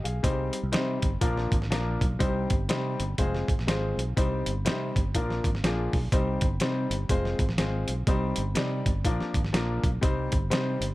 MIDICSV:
0, 0, Header, 1, 4, 480
1, 0, Start_track
1, 0, Tempo, 489396
1, 235, Time_signature, 4, 2, 24, 8
1, 10732, End_track
2, 0, Start_track
2, 0, Title_t, "Grand piano"
2, 0, Program_c, 0, 0
2, 39, Note_on_c, 0, 77, 66
2, 40, Note_on_c, 0, 68, 55
2, 226, Note_on_c, 0, 55, 89
2, 228, Note_on_c, 0, 60, 81
2, 233, Note_on_c, 0, 63, 85
2, 234, Note_on_c, 0, 72, 97
2, 235, Note_on_c, 0, 67, 82
2, 501, Note_off_c, 0, 68, 0
2, 501, Note_off_c, 0, 77, 0
2, 544, Note_off_c, 0, 55, 0
2, 546, Note_off_c, 0, 60, 0
2, 548, Note_off_c, 0, 63, 0
2, 549, Note_off_c, 0, 67, 0
2, 549, Note_off_c, 0, 72, 0
2, 706, Note_on_c, 0, 55, 85
2, 707, Note_on_c, 0, 60, 85
2, 707, Note_on_c, 0, 63, 85
2, 712, Note_on_c, 0, 72, 96
2, 716, Note_on_c, 0, 67, 84
2, 1025, Note_off_c, 0, 55, 0
2, 1026, Note_off_c, 0, 60, 0
2, 1026, Note_off_c, 0, 63, 0
2, 1028, Note_off_c, 0, 72, 0
2, 1031, Note_off_c, 0, 67, 0
2, 1187, Note_on_c, 0, 53, 89
2, 1189, Note_on_c, 0, 62, 81
2, 1191, Note_on_c, 0, 58, 80
2, 1195, Note_on_c, 0, 65, 82
2, 1196, Note_on_c, 0, 70, 94
2, 1507, Note_off_c, 0, 53, 0
2, 1508, Note_off_c, 0, 62, 0
2, 1509, Note_off_c, 0, 58, 0
2, 1511, Note_off_c, 0, 65, 0
2, 1511, Note_off_c, 0, 70, 0
2, 1671, Note_on_c, 0, 53, 81
2, 1675, Note_on_c, 0, 58, 73
2, 1676, Note_on_c, 0, 62, 78
2, 1677, Note_on_c, 0, 65, 77
2, 1680, Note_on_c, 0, 70, 91
2, 1989, Note_off_c, 0, 53, 0
2, 1991, Note_off_c, 0, 58, 0
2, 1992, Note_off_c, 0, 62, 0
2, 1992, Note_off_c, 0, 65, 0
2, 1994, Note_off_c, 0, 70, 0
2, 2149, Note_on_c, 0, 55, 92
2, 2151, Note_on_c, 0, 60, 83
2, 2151, Note_on_c, 0, 63, 81
2, 2157, Note_on_c, 0, 72, 98
2, 2158, Note_on_c, 0, 67, 82
2, 2469, Note_off_c, 0, 55, 0
2, 2470, Note_off_c, 0, 60, 0
2, 2470, Note_off_c, 0, 63, 0
2, 2473, Note_off_c, 0, 72, 0
2, 2474, Note_off_c, 0, 67, 0
2, 2637, Note_on_c, 0, 55, 94
2, 2642, Note_on_c, 0, 67, 86
2, 2642, Note_on_c, 0, 72, 100
2, 2643, Note_on_c, 0, 60, 82
2, 2644, Note_on_c, 0, 63, 84
2, 2953, Note_off_c, 0, 55, 0
2, 2956, Note_off_c, 0, 67, 0
2, 2956, Note_off_c, 0, 72, 0
2, 2957, Note_off_c, 0, 60, 0
2, 2957, Note_off_c, 0, 63, 0
2, 3121, Note_on_c, 0, 56, 92
2, 3125, Note_on_c, 0, 60, 84
2, 3126, Note_on_c, 0, 65, 79
2, 3128, Note_on_c, 0, 72, 94
2, 3131, Note_on_c, 0, 68, 84
2, 3436, Note_off_c, 0, 56, 0
2, 3438, Note_off_c, 0, 60, 0
2, 3438, Note_off_c, 0, 65, 0
2, 3439, Note_off_c, 0, 72, 0
2, 3441, Note_off_c, 0, 68, 0
2, 3599, Note_on_c, 0, 56, 79
2, 3601, Note_on_c, 0, 60, 73
2, 3603, Note_on_c, 0, 65, 74
2, 3605, Note_on_c, 0, 68, 77
2, 3609, Note_on_c, 0, 72, 96
2, 3915, Note_off_c, 0, 56, 0
2, 3916, Note_off_c, 0, 60, 0
2, 3917, Note_off_c, 0, 65, 0
2, 3918, Note_off_c, 0, 68, 0
2, 3920, Note_off_c, 0, 72, 0
2, 4085, Note_on_c, 0, 60, 77
2, 4087, Note_on_c, 0, 55, 94
2, 4087, Note_on_c, 0, 67, 82
2, 4092, Note_on_c, 0, 63, 79
2, 4097, Note_on_c, 0, 72, 94
2, 4398, Note_off_c, 0, 60, 0
2, 4399, Note_off_c, 0, 55, 0
2, 4399, Note_off_c, 0, 67, 0
2, 4402, Note_off_c, 0, 63, 0
2, 4404, Note_off_c, 0, 72, 0
2, 4559, Note_on_c, 0, 55, 85
2, 4563, Note_on_c, 0, 60, 78
2, 4563, Note_on_c, 0, 63, 81
2, 4567, Note_on_c, 0, 67, 79
2, 4572, Note_on_c, 0, 72, 100
2, 4875, Note_off_c, 0, 55, 0
2, 4877, Note_off_c, 0, 60, 0
2, 4877, Note_off_c, 0, 63, 0
2, 4879, Note_off_c, 0, 67, 0
2, 4882, Note_off_c, 0, 72, 0
2, 5052, Note_on_c, 0, 65, 83
2, 5053, Note_on_c, 0, 53, 87
2, 5053, Note_on_c, 0, 62, 78
2, 5056, Note_on_c, 0, 58, 75
2, 5058, Note_on_c, 0, 70, 94
2, 5361, Note_off_c, 0, 65, 0
2, 5362, Note_off_c, 0, 53, 0
2, 5362, Note_off_c, 0, 62, 0
2, 5364, Note_off_c, 0, 58, 0
2, 5365, Note_off_c, 0, 70, 0
2, 5527, Note_on_c, 0, 53, 83
2, 5531, Note_on_c, 0, 58, 68
2, 5538, Note_on_c, 0, 62, 73
2, 5540, Note_on_c, 0, 65, 74
2, 5542, Note_on_c, 0, 68, 81
2, 5839, Note_off_c, 0, 53, 0
2, 5841, Note_off_c, 0, 58, 0
2, 5844, Note_off_c, 0, 62, 0
2, 5845, Note_off_c, 0, 65, 0
2, 5846, Note_off_c, 0, 68, 0
2, 6007, Note_on_c, 0, 60, 79
2, 6009, Note_on_c, 0, 55, 90
2, 6014, Note_on_c, 0, 63, 82
2, 6015, Note_on_c, 0, 72, 97
2, 6019, Note_on_c, 0, 67, 80
2, 6318, Note_off_c, 0, 60, 0
2, 6319, Note_off_c, 0, 55, 0
2, 6322, Note_off_c, 0, 63, 0
2, 6322, Note_off_c, 0, 72, 0
2, 6324, Note_off_c, 0, 67, 0
2, 6481, Note_on_c, 0, 60, 81
2, 6483, Note_on_c, 0, 55, 84
2, 6488, Note_on_c, 0, 63, 80
2, 6490, Note_on_c, 0, 67, 75
2, 6490, Note_on_c, 0, 72, 93
2, 6795, Note_off_c, 0, 60, 0
2, 6796, Note_off_c, 0, 55, 0
2, 6798, Note_off_c, 0, 63, 0
2, 6799, Note_off_c, 0, 67, 0
2, 6799, Note_off_c, 0, 72, 0
2, 6962, Note_on_c, 0, 60, 77
2, 6963, Note_on_c, 0, 56, 84
2, 6964, Note_on_c, 0, 68, 77
2, 6966, Note_on_c, 0, 65, 77
2, 6970, Note_on_c, 0, 72, 101
2, 7275, Note_off_c, 0, 56, 0
2, 7275, Note_off_c, 0, 60, 0
2, 7276, Note_off_c, 0, 68, 0
2, 7277, Note_off_c, 0, 65, 0
2, 7279, Note_off_c, 0, 72, 0
2, 7440, Note_on_c, 0, 56, 78
2, 7440, Note_on_c, 0, 68, 73
2, 7442, Note_on_c, 0, 60, 76
2, 7446, Note_on_c, 0, 65, 73
2, 7449, Note_on_c, 0, 72, 86
2, 7753, Note_off_c, 0, 56, 0
2, 7753, Note_off_c, 0, 68, 0
2, 7755, Note_off_c, 0, 60, 0
2, 7756, Note_off_c, 0, 65, 0
2, 7758, Note_off_c, 0, 72, 0
2, 7917, Note_on_c, 0, 60, 82
2, 7918, Note_on_c, 0, 55, 94
2, 7921, Note_on_c, 0, 63, 85
2, 7926, Note_on_c, 0, 67, 82
2, 7929, Note_on_c, 0, 72, 97
2, 8231, Note_off_c, 0, 60, 0
2, 8232, Note_off_c, 0, 55, 0
2, 8233, Note_off_c, 0, 63, 0
2, 8236, Note_off_c, 0, 67, 0
2, 8237, Note_off_c, 0, 72, 0
2, 8385, Note_on_c, 0, 55, 88
2, 8391, Note_on_c, 0, 63, 79
2, 8393, Note_on_c, 0, 60, 79
2, 8393, Note_on_c, 0, 67, 80
2, 8393, Note_on_c, 0, 74, 99
2, 8704, Note_off_c, 0, 55, 0
2, 8708, Note_off_c, 0, 60, 0
2, 8708, Note_off_c, 0, 63, 0
2, 8708, Note_off_c, 0, 67, 0
2, 8708, Note_off_c, 0, 74, 0
2, 8876, Note_on_c, 0, 65, 80
2, 8877, Note_on_c, 0, 53, 84
2, 8879, Note_on_c, 0, 58, 73
2, 8881, Note_on_c, 0, 62, 84
2, 8886, Note_on_c, 0, 70, 94
2, 9190, Note_off_c, 0, 53, 0
2, 9190, Note_off_c, 0, 65, 0
2, 9191, Note_off_c, 0, 58, 0
2, 9192, Note_off_c, 0, 62, 0
2, 9194, Note_off_c, 0, 70, 0
2, 9344, Note_on_c, 0, 53, 77
2, 9346, Note_on_c, 0, 62, 81
2, 9347, Note_on_c, 0, 58, 78
2, 9350, Note_on_c, 0, 70, 85
2, 9351, Note_on_c, 0, 65, 78
2, 9663, Note_off_c, 0, 53, 0
2, 9664, Note_off_c, 0, 58, 0
2, 9664, Note_off_c, 0, 62, 0
2, 9665, Note_off_c, 0, 70, 0
2, 9666, Note_off_c, 0, 65, 0
2, 9821, Note_on_c, 0, 55, 89
2, 9824, Note_on_c, 0, 60, 80
2, 9828, Note_on_c, 0, 63, 80
2, 9832, Note_on_c, 0, 72, 100
2, 9835, Note_on_c, 0, 67, 79
2, 10140, Note_off_c, 0, 55, 0
2, 10142, Note_off_c, 0, 60, 0
2, 10144, Note_off_c, 0, 63, 0
2, 10146, Note_off_c, 0, 72, 0
2, 10147, Note_off_c, 0, 67, 0
2, 10301, Note_on_c, 0, 55, 86
2, 10301, Note_on_c, 0, 60, 84
2, 10306, Note_on_c, 0, 63, 82
2, 10309, Note_on_c, 0, 72, 101
2, 10310, Note_on_c, 0, 67, 79
2, 10620, Note_off_c, 0, 55, 0
2, 10620, Note_off_c, 0, 60, 0
2, 10622, Note_off_c, 0, 63, 0
2, 10623, Note_off_c, 0, 72, 0
2, 10624, Note_off_c, 0, 67, 0
2, 10732, End_track
3, 0, Start_track
3, 0, Title_t, "Fingered electric bass"
3, 0, Program_c, 1, 33
3, 47, Note_on_c, 1, 35, 88
3, 204, Note_off_c, 1, 35, 0
3, 238, Note_on_c, 1, 36, 96
3, 482, Note_off_c, 1, 36, 0
3, 621, Note_on_c, 1, 36, 93
3, 706, Note_on_c, 1, 48, 98
3, 720, Note_off_c, 1, 36, 0
3, 955, Note_off_c, 1, 48, 0
3, 1007, Note_on_c, 1, 31, 80
3, 1166, Note_off_c, 1, 31, 0
3, 1190, Note_on_c, 1, 34, 100
3, 1439, Note_off_c, 1, 34, 0
3, 1492, Note_on_c, 1, 32, 101
3, 1679, Note_off_c, 1, 32, 0
3, 1679, Note_on_c, 1, 34, 101
3, 1924, Note_off_c, 1, 34, 0
3, 1979, Note_on_c, 1, 35, 95
3, 2134, Note_off_c, 1, 35, 0
3, 2165, Note_on_c, 1, 36, 114
3, 2408, Note_off_c, 1, 36, 0
3, 2459, Note_on_c, 1, 31, 92
3, 2615, Note_off_c, 1, 31, 0
3, 2649, Note_on_c, 1, 48, 102
3, 2891, Note_off_c, 1, 48, 0
3, 2944, Note_on_c, 1, 31, 94
3, 3098, Note_off_c, 1, 31, 0
3, 3123, Note_on_c, 1, 29, 102
3, 3368, Note_off_c, 1, 29, 0
3, 3418, Note_on_c, 1, 32, 88
3, 3496, Note_off_c, 1, 32, 0
3, 3509, Note_on_c, 1, 34, 89
3, 3588, Note_off_c, 1, 34, 0
3, 3605, Note_on_c, 1, 32, 99
3, 3849, Note_off_c, 1, 32, 0
3, 3896, Note_on_c, 1, 35, 90
3, 4053, Note_off_c, 1, 35, 0
3, 4091, Note_on_c, 1, 36, 110
3, 4333, Note_off_c, 1, 36, 0
3, 4382, Note_on_c, 1, 31, 97
3, 4560, Note_on_c, 1, 48, 99
3, 4574, Note_off_c, 1, 31, 0
3, 4806, Note_off_c, 1, 48, 0
3, 4868, Note_on_c, 1, 31, 79
3, 5021, Note_off_c, 1, 31, 0
3, 5047, Note_on_c, 1, 34, 98
3, 5290, Note_off_c, 1, 34, 0
3, 5338, Note_on_c, 1, 32, 91
3, 5494, Note_off_c, 1, 32, 0
3, 5528, Note_on_c, 1, 34, 100
3, 5771, Note_off_c, 1, 34, 0
3, 5821, Note_on_c, 1, 35, 92
3, 5976, Note_off_c, 1, 35, 0
3, 6004, Note_on_c, 1, 36, 92
3, 6248, Note_off_c, 1, 36, 0
3, 6295, Note_on_c, 1, 31, 93
3, 6452, Note_off_c, 1, 31, 0
3, 6484, Note_on_c, 1, 48, 97
3, 6728, Note_off_c, 1, 48, 0
3, 6773, Note_on_c, 1, 31, 91
3, 6931, Note_off_c, 1, 31, 0
3, 6956, Note_on_c, 1, 29, 103
3, 7202, Note_off_c, 1, 29, 0
3, 7249, Note_on_c, 1, 32, 90
3, 7330, Note_off_c, 1, 32, 0
3, 7346, Note_on_c, 1, 34, 98
3, 7425, Note_off_c, 1, 34, 0
3, 7442, Note_on_c, 1, 32, 109
3, 7686, Note_off_c, 1, 32, 0
3, 7734, Note_on_c, 1, 35, 90
3, 7891, Note_off_c, 1, 35, 0
3, 7914, Note_on_c, 1, 36, 112
3, 8160, Note_off_c, 1, 36, 0
3, 8217, Note_on_c, 1, 31, 98
3, 8372, Note_off_c, 1, 31, 0
3, 8402, Note_on_c, 1, 48, 91
3, 8644, Note_off_c, 1, 48, 0
3, 8693, Note_on_c, 1, 31, 96
3, 8848, Note_off_c, 1, 31, 0
3, 8872, Note_on_c, 1, 34, 99
3, 8996, Note_off_c, 1, 34, 0
3, 9165, Note_on_c, 1, 32, 99
3, 9324, Note_off_c, 1, 32, 0
3, 9353, Note_on_c, 1, 34, 109
3, 9598, Note_off_c, 1, 34, 0
3, 9650, Note_on_c, 1, 35, 88
3, 9806, Note_off_c, 1, 35, 0
3, 9835, Note_on_c, 1, 36, 109
3, 10078, Note_off_c, 1, 36, 0
3, 10128, Note_on_c, 1, 31, 100
3, 10284, Note_off_c, 1, 31, 0
3, 10310, Note_on_c, 1, 48, 107
3, 10555, Note_off_c, 1, 48, 0
3, 10600, Note_on_c, 1, 31, 84
3, 10732, Note_off_c, 1, 31, 0
3, 10732, End_track
4, 0, Start_track
4, 0, Title_t, "Drums"
4, 52, Note_on_c, 9, 42, 71
4, 150, Note_off_c, 9, 42, 0
4, 233, Note_on_c, 9, 36, 109
4, 236, Note_on_c, 9, 42, 108
4, 331, Note_off_c, 9, 36, 0
4, 334, Note_off_c, 9, 42, 0
4, 519, Note_on_c, 9, 42, 85
4, 618, Note_off_c, 9, 42, 0
4, 712, Note_on_c, 9, 42, 92
4, 728, Note_on_c, 9, 38, 108
4, 811, Note_off_c, 9, 42, 0
4, 826, Note_off_c, 9, 38, 0
4, 1004, Note_on_c, 9, 42, 76
4, 1009, Note_on_c, 9, 36, 91
4, 1102, Note_off_c, 9, 42, 0
4, 1107, Note_off_c, 9, 36, 0
4, 1191, Note_on_c, 9, 42, 104
4, 1192, Note_on_c, 9, 36, 100
4, 1289, Note_off_c, 9, 42, 0
4, 1290, Note_off_c, 9, 36, 0
4, 1348, Note_on_c, 9, 38, 35
4, 1446, Note_off_c, 9, 38, 0
4, 1488, Note_on_c, 9, 36, 97
4, 1495, Note_on_c, 9, 42, 68
4, 1587, Note_off_c, 9, 36, 0
4, 1589, Note_on_c, 9, 38, 36
4, 1593, Note_off_c, 9, 42, 0
4, 1685, Note_off_c, 9, 38, 0
4, 1685, Note_on_c, 9, 38, 127
4, 1687, Note_on_c, 9, 42, 100
4, 1783, Note_off_c, 9, 38, 0
4, 1785, Note_off_c, 9, 42, 0
4, 1974, Note_on_c, 9, 36, 91
4, 1978, Note_on_c, 9, 42, 76
4, 2072, Note_off_c, 9, 36, 0
4, 2077, Note_off_c, 9, 42, 0
4, 2161, Note_on_c, 9, 36, 116
4, 2163, Note_on_c, 9, 42, 100
4, 2259, Note_off_c, 9, 36, 0
4, 2261, Note_off_c, 9, 42, 0
4, 2452, Note_on_c, 9, 42, 86
4, 2458, Note_on_c, 9, 36, 102
4, 2550, Note_off_c, 9, 42, 0
4, 2556, Note_off_c, 9, 36, 0
4, 2639, Note_on_c, 9, 42, 94
4, 2655, Note_on_c, 9, 38, 106
4, 2737, Note_off_c, 9, 42, 0
4, 2753, Note_off_c, 9, 38, 0
4, 2939, Note_on_c, 9, 42, 82
4, 3037, Note_off_c, 9, 42, 0
4, 3121, Note_on_c, 9, 42, 100
4, 3122, Note_on_c, 9, 36, 93
4, 3219, Note_off_c, 9, 42, 0
4, 3220, Note_off_c, 9, 36, 0
4, 3281, Note_on_c, 9, 38, 36
4, 3379, Note_off_c, 9, 38, 0
4, 3418, Note_on_c, 9, 36, 96
4, 3426, Note_on_c, 9, 42, 69
4, 3516, Note_off_c, 9, 36, 0
4, 3522, Note_on_c, 9, 38, 35
4, 3524, Note_off_c, 9, 42, 0
4, 3612, Note_off_c, 9, 38, 0
4, 3612, Note_on_c, 9, 38, 127
4, 3613, Note_on_c, 9, 42, 95
4, 3710, Note_off_c, 9, 38, 0
4, 3712, Note_off_c, 9, 42, 0
4, 3913, Note_on_c, 9, 42, 72
4, 4011, Note_off_c, 9, 42, 0
4, 4092, Note_on_c, 9, 36, 111
4, 4096, Note_on_c, 9, 42, 99
4, 4190, Note_off_c, 9, 36, 0
4, 4194, Note_off_c, 9, 42, 0
4, 4378, Note_on_c, 9, 42, 83
4, 4476, Note_off_c, 9, 42, 0
4, 4568, Note_on_c, 9, 42, 93
4, 4584, Note_on_c, 9, 38, 115
4, 4666, Note_off_c, 9, 42, 0
4, 4682, Note_off_c, 9, 38, 0
4, 4865, Note_on_c, 9, 36, 89
4, 4869, Note_on_c, 9, 42, 79
4, 4963, Note_off_c, 9, 36, 0
4, 4967, Note_off_c, 9, 42, 0
4, 5047, Note_on_c, 9, 36, 90
4, 5048, Note_on_c, 9, 42, 105
4, 5145, Note_off_c, 9, 36, 0
4, 5147, Note_off_c, 9, 42, 0
4, 5203, Note_on_c, 9, 38, 37
4, 5301, Note_off_c, 9, 38, 0
4, 5338, Note_on_c, 9, 36, 88
4, 5343, Note_on_c, 9, 42, 71
4, 5436, Note_off_c, 9, 36, 0
4, 5441, Note_off_c, 9, 42, 0
4, 5442, Note_on_c, 9, 38, 36
4, 5533, Note_off_c, 9, 38, 0
4, 5533, Note_on_c, 9, 38, 123
4, 5534, Note_on_c, 9, 42, 94
4, 5631, Note_off_c, 9, 38, 0
4, 5632, Note_off_c, 9, 42, 0
4, 5819, Note_on_c, 9, 36, 92
4, 5824, Note_on_c, 9, 46, 50
4, 5918, Note_off_c, 9, 36, 0
4, 5922, Note_off_c, 9, 46, 0
4, 6005, Note_on_c, 9, 36, 116
4, 6007, Note_on_c, 9, 42, 103
4, 6103, Note_off_c, 9, 36, 0
4, 6105, Note_off_c, 9, 42, 0
4, 6288, Note_on_c, 9, 42, 82
4, 6297, Note_on_c, 9, 36, 99
4, 6386, Note_off_c, 9, 42, 0
4, 6395, Note_off_c, 9, 36, 0
4, 6473, Note_on_c, 9, 42, 91
4, 6489, Note_on_c, 9, 38, 115
4, 6571, Note_off_c, 9, 42, 0
4, 6587, Note_off_c, 9, 38, 0
4, 6778, Note_on_c, 9, 42, 81
4, 6876, Note_off_c, 9, 42, 0
4, 6958, Note_on_c, 9, 36, 101
4, 6958, Note_on_c, 9, 42, 104
4, 7056, Note_off_c, 9, 36, 0
4, 7056, Note_off_c, 9, 42, 0
4, 7114, Note_on_c, 9, 38, 36
4, 7212, Note_off_c, 9, 38, 0
4, 7248, Note_on_c, 9, 36, 95
4, 7253, Note_on_c, 9, 42, 72
4, 7344, Note_on_c, 9, 38, 36
4, 7346, Note_off_c, 9, 36, 0
4, 7351, Note_off_c, 9, 42, 0
4, 7435, Note_off_c, 9, 38, 0
4, 7435, Note_on_c, 9, 38, 124
4, 7437, Note_on_c, 9, 42, 95
4, 7534, Note_off_c, 9, 38, 0
4, 7535, Note_off_c, 9, 42, 0
4, 7726, Note_on_c, 9, 42, 70
4, 7824, Note_off_c, 9, 42, 0
4, 7915, Note_on_c, 9, 36, 108
4, 7915, Note_on_c, 9, 42, 100
4, 8013, Note_off_c, 9, 36, 0
4, 8013, Note_off_c, 9, 42, 0
4, 8197, Note_on_c, 9, 42, 87
4, 8295, Note_off_c, 9, 42, 0
4, 8390, Note_on_c, 9, 42, 90
4, 8405, Note_on_c, 9, 38, 116
4, 8488, Note_off_c, 9, 42, 0
4, 8503, Note_off_c, 9, 38, 0
4, 8690, Note_on_c, 9, 36, 88
4, 8691, Note_on_c, 9, 42, 83
4, 8788, Note_off_c, 9, 36, 0
4, 8789, Note_off_c, 9, 42, 0
4, 8872, Note_on_c, 9, 36, 97
4, 8875, Note_on_c, 9, 42, 106
4, 8971, Note_off_c, 9, 36, 0
4, 8973, Note_off_c, 9, 42, 0
4, 9028, Note_on_c, 9, 38, 36
4, 9126, Note_off_c, 9, 38, 0
4, 9164, Note_on_c, 9, 36, 92
4, 9170, Note_on_c, 9, 42, 69
4, 9262, Note_off_c, 9, 36, 0
4, 9264, Note_on_c, 9, 38, 36
4, 9268, Note_off_c, 9, 42, 0
4, 9358, Note_off_c, 9, 38, 0
4, 9358, Note_on_c, 9, 38, 127
4, 9359, Note_on_c, 9, 42, 98
4, 9456, Note_off_c, 9, 38, 0
4, 9457, Note_off_c, 9, 42, 0
4, 9647, Note_on_c, 9, 36, 100
4, 9651, Note_on_c, 9, 42, 70
4, 9745, Note_off_c, 9, 36, 0
4, 9749, Note_off_c, 9, 42, 0
4, 9835, Note_on_c, 9, 42, 95
4, 9836, Note_on_c, 9, 36, 114
4, 9933, Note_off_c, 9, 42, 0
4, 9934, Note_off_c, 9, 36, 0
4, 10121, Note_on_c, 9, 42, 91
4, 10128, Note_on_c, 9, 36, 98
4, 10219, Note_off_c, 9, 42, 0
4, 10226, Note_off_c, 9, 36, 0
4, 10313, Note_on_c, 9, 42, 97
4, 10328, Note_on_c, 9, 38, 121
4, 10411, Note_off_c, 9, 42, 0
4, 10426, Note_off_c, 9, 38, 0
4, 10609, Note_on_c, 9, 42, 78
4, 10707, Note_off_c, 9, 42, 0
4, 10732, End_track
0, 0, End_of_file